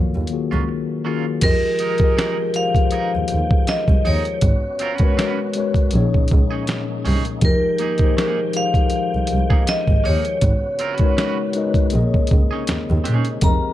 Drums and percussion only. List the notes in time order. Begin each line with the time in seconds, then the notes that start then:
0.27 closed hi-hat
1.41 kick, closed hi-hat, crash
1.79 closed hi-hat
1.98 kick, closed hi-hat
2.18 snare, closed hi-hat
2.54 closed hi-hat
2.75 kick, closed hi-hat
2.91 closed hi-hat
3.28 closed hi-hat
3.51 kick
3.67 snare, closed hi-hat
3.88 kick
4.05 open hi-hat
4.25 closed hi-hat
4.41 kick, closed hi-hat
4.79 closed hi-hat
4.98 kick, closed hi-hat
5.19 snare, closed hi-hat
5.54 closed hi-hat
5.74 kick, closed hi-hat
5.91 closed hi-hat
6.14 kick
6.28 kick, closed hi-hat
6.67 snare, closed hi-hat
7.05 open hi-hat
7.25 closed hi-hat
7.41 kick, closed hi-hat
7.78 closed hi-hat
7.98 kick, closed hi-hat
8.18 snare, closed hi-hat
8.53 closed hi-hat
8.74 kick, closed hi-hat
8.90 closed hi-hat
9.27 closed hi-hat
9.50 kick
9.67 snare, closed hi-hat
9.88 kick
10.05 open hi-hat
10.25 closed hi-hat
10.41 kick, closed hi-hat
10.79 closed hi-hat
10.98 kick, closed hi-hat
11.18 snare, closed hi-hat
11.53 closed hi-hat
11.74 kick, closed hi-hat
11.90 closed hi-hat
12.14 kick
12.27 closed hi-hat
12.31 kick
12.67 snare, closed hi-hat
13.05 closed hi-hat
13.25 closed hi-hat
13.41 kick, closed hi-hat